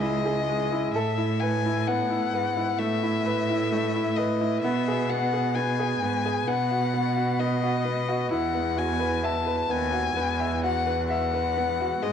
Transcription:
Already playing: C#2 C#3 G#3 E4 G#4
0.02 E4 D#5
0.26 G#4
0.49 G#3
0.72 E4
0.93 A2 A4 E5
1.18 E4
1.40 B4 G#5
1.66 E4
1.87 B3 F#5
2.10 E4
2.32 G#2 B4
2.57 E4
2.78 A2 A3 E5
3.03 E4
3.26 B4
3.50 E4
3.72 A3
3.96 E4
4.17 B4 D#5
4.41 E4
4.62 B2 B3 E5
4.88 G#4
5.10 B3 F#5
5.33 G#4
5.55 B3 G#5
5.79 G#4
6.02 G#2 B3
6.25 G#4
6.47 B2 B3 F#5
6.71 F#4
6.94 B3
7.17 F#4
7.40 B3 D#5
7.64 F#4
7.85 B3
8.09 F#4
8.31 E2 E4 F#5
8.54 B3
8.77 F#4 G#5
9.00 B4
9.24 E5 A5
9.46 B4
9.70 D#2 B3 G#5
9.92 F#4
10.16 E2 B3
10.40 E5
10.64 F#4 F#5
10.86 B4
11.10 E5 F#5
11.33 B4
11.57 B3
11.80 F#4
12.02 G#2 G#3 D#5

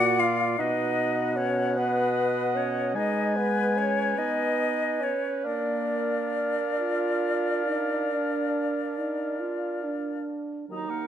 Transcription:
Already playing: A#2 F#4 D5 F#5
0.19 F4 F5
0.58 B2 D#4 B4 D#5 F#5
1.37 C#4 C#5
1.76 B3 B4 D#5
2.55 C#4 C#5
2.95 G#3 D#4 B4 D#5 G#5
3.36 B3 B4
3.77 C#4 C#5
4.18 B3 D#4 D#5
5.01 C#4 C#5
5.44 A#3 D4 A#4 D5 F5
6.78 F4
7.66 D#4
8.11 D4
8.98 D#4
9.40 F4
9.84 D4
10.69 D#2 F#3 D#4 D#5 A#5
10.90 A#3 A#4 F#5

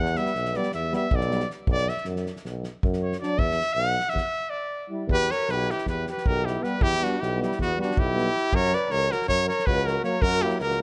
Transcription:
Already playing: E2 F#5
0.05 snare
0.15 G3 B3 E5, snare
0.26 snare
0.35 B1, snare
0.45 snare
0.53 G3 B3 D5, snare
0.63 snare
0.72 E2 E5, snare
0.91 G3 B3, snare
0.96 E5
1.11 B1, kick
1.16 D5
1.21 snare
1.28 G3 B3, snare
1.40 snare
1.50 snare
1.67 B1, kick
1.72 D5
1.78 snare
1.88 E5, snare
1.97 snare
2.04 F#2, snare
2.16 snare
2.26 snare
2.36 snare
2.45 B1, snare
2.64 snare
2.83 F#2, kick
2.93 snare
3.02 C#5
3.12 snare
3.20 F#3 D4 D5, snare
3.37 E2 E5, kick
3.51 snare
3.61 snare
3.73 B1 F#5
3.78 snare
4.00 snare
4.09 E5, snare
4.13 E2, kick, snare
4.50 D5
4.90 G3 E4
5.07 E2, kick
5.12 G4 B4
5.20 snare
5.31 A#4 C#5, snare
5.48 B1 B4, snare
5.53 G4
5.70 E4 G4, snare
5.78 snare
5.86 E2 B4, kick, snare
5.90 G4
6.07 G4, snare
6.12 B4
6.17 snare
6.26 B1 G4 A#4, kick
6.45 E4 G4, snare
6.60 G3 B3 G4 B4, snare
6.81 E2 E4 G4, kick
6.93 snare
7.00 G3 B3 D4 F#4
7.04 snare
7.20 B1 E4 G4, snare
7.37 G3 B3
7.42 E4 G4, snare
7.51 snare
7.58 E2 B3 F#4, kick, snare
7.77 G3 B3 F#4
7.82 D4, snare
7.91 snare
7.97 B1 E4 G4, kick
8.14 G3 B3, snare
8.37 snare
8.52 F#2 A#4 C#5, kick
8.64 snare
8.72 B4 D5, snare
8.90 C#2 A#4 C#5, snare
9.11 F#4 A#4, snare
9.22 snare
9.28 F#2 A#4 C#5, kick, snare
9.47 A#4 C#5, snare
9.59 snare
9.66 C#2 F#4 B4, kick
9.86 F#4 A#4, snare
10.02 F#3 A#3 A#4 C#5, snare
10.22 F#2 F#4 A#4, kick
10.31 snare
10.41 F#3 A#3 G4
10.46 E4, snare
10.59 C#2 A#4, snare
10.64 F#4
10.70 snare

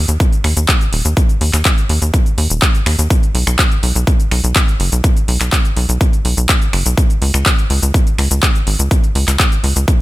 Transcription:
0.08 D#2, closed hi-hat, shaker
0.20 kick, closed hi-hat, shaker
0.32 closed hi-hat, shaker
0.44 D#2, finger snap, open hi-hat
0.57 D#2, closed hi-hat, shaker
0.68 kick, clap, closed hi-hat, shaker
0.81 closed hi-hat, shaker
0.93 D#1, open hi-hat
1.05 D#2, closed hi-hat, shaker
1.17 kick, closed hi-hat, shaker
1.29 closed hi-hat, shaker
1.41 D#2, open hi-hat
1.53 D#2, finger snap, clap, shaker
1.65 kick, clap, closed hi-hat, shaker
1.78 closed hi-hat, shaker
1.89 D#2, open hi-hat
2.02 D#2, closed hi-hat, shaker
2.14 kick, closed hi-hat, shaker
2.26 closed hi-hat, shaker
2.38 D#2, open hi-hat
2.50 D#1, closed hi-hat, shaker
2.62 kick, clap, closed hi-hat, shaker
2.74 closed hi-hat, shaker
2.86 D#2, finger snap, open hi-hat
2.99 D#2, closed hi-hat, shaker
3.10 kick, closed hi-hat, shaker
3.23 closed hi-hat, shaker
3.35 B1, open hi-hat
3.47 B1, finger snap, shaker
3.59 kick, clap, closed hi-hat, shaker
3.71 closed hi-hat, shaker
3.83 B1, open hi-hat
3.95 B1, closed hi-hat, shaker
4.07 kick, closed hi-hat, shaker
4.20 closed hi-hat, shaker
4.31 B1, finger snap, open hi-hat
4.44 B1, closed hi-hat, shaker
4.56 kick, clap, closed hi-hat, shaker
4.68 closed hi-hat, shaker
4.80 F#1, open hi-hat
4.92 B1, closed hi-hat, shaker
5.04 kick, closed hi-hat, shaker
5.17 closed hi-hat, shaker
5.28 B1, open hi-hat
5.41 B1, finger snap, clap, shaker
5.52 kick, clap, closed hi-hat, shaker
5.65 closed hi-hat, shaker
5.77 B1, open hi-hat
5.89 B1, closed hi-hat, shaker
6.01 kick, closed hi-hat, shaker
6.13 closed hi-hat, shaker
6.25 B1, open hi-hat
6.37 B1, closed hi-hat, shaker
6.49 kick, clap, closed hi-hat, shaker
6.62 closed hi-hat, shaker
6.73 F#1, finger snap, open hi-hat
6.86 B1, closed hi-hat, shaker
6.97 kick, closed hi-hat, shaker
7.10 closed hi-hat, shaker
7.22 C#2, open hi-hat
7.34 C#2, finger snap, closed hi-hat, shaker
7.46 kick, clap, closed hi-hat, shaker
7.58 closed hi-hat, shaker
7.70 C#2, open hi-hat
7.83 C#2, closed hi-hat, shaker
7.94 kick, closed hi-hat, shaker
8.07 closed hi-hat, shaker
8.18 C#2, finger snap, open hi-hat
8.31 C#2, closed hi-hat, shaker
8.43 kick, clap, closed hi-hat, shaker
8.55 closed hi-hat, shaker
8.67 G#1, open hi-hat
8.79 C#2, closed hi-hat, shaker
8.91 kick, closed hi-hat, shaker
9.04 closed hi-hat, shaker
9.15 C#2, open hi-hat
9.28 C#2, finger snap, clap, closed hi-hat, shaker
9.39 kick, clap, closed hi-hat, shaker
9.52 closed hi-hat, shaker
9.64 C#2, open hi-hat
9.76 C#2, closed hi-hat, shaker
9.88 kick, closed hi-hat, shaker

